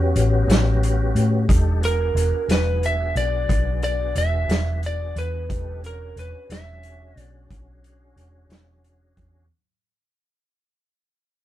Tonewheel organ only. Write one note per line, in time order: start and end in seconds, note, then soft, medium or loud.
0.00 1.46 B3 medium
0.00 1.46 C#4 medium
0.00 1.46 F#4 medium
0.00 1.46 G4 medium
1.48 1.80 D4 medium
1.48 1.82 D#4 medium
1.48 1.82 G4 medium
1.48 1.83 A4 medium
1.81 5.46 B3 medium
1.81 5.46 D4 medium
1.81 5.46 F#4 medium
1.81 5.46 G#4 medium
5.48 5.81 D4 medium
5.48 5.83 D#4 medium
5.48 5.83 G4 soft
5.48 5.83 A4 medium
5.82 9.46 C#4 medium
5.82 9.46 D4 medium
5.82 9.46 F#4 medium
5.82 9.46 G#4 medium